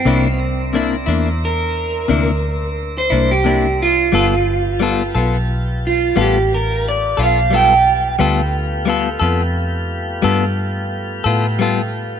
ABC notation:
X:1
M:12/8
L:1/16
Q:3/8=59
K:Gmix
V:1 name="Clean electric guitar"
C6 z2 _B8- B c2 G3 F2- | F6 z4 F2 G2 _B2 d2 f2 g4- | g8 z16 |]
V:2 name="Tonewheel organ"
[_EFB^c]2 [D_B=c=e]16- [DBce]6 | [B,FGa]24 | [A,B,FG]24 |]
V:3 name="Clean electric guitar"
[C,_B,DE]2 z2 [C,B,DE]2 [B,DE]2 z4 [C,B,DE]2 z4 [B,DE]2 [C,B,DE]2 z2 | [G,B,FA]2 z2 [G,B,FA]2 [B,FA]2 z4 [G,B,FA]2 z4 [B,FA]2 [G,B,FA]2 z2 | [G,B,FA]2 z2 [G,B,FA]2 [B,FA]2 z4 [G,B,FA]2 z4 [B,FA]2 [G,B,FA]2 z2 |]
V:4 name="Fingered electric bass" clef=bass
C,,6 E,,6 D,,6 C,,6 | G,,,6 B,,,6 A,,,6 B,,,6 | D,,6 F,,6 G,,6 A,,6 |]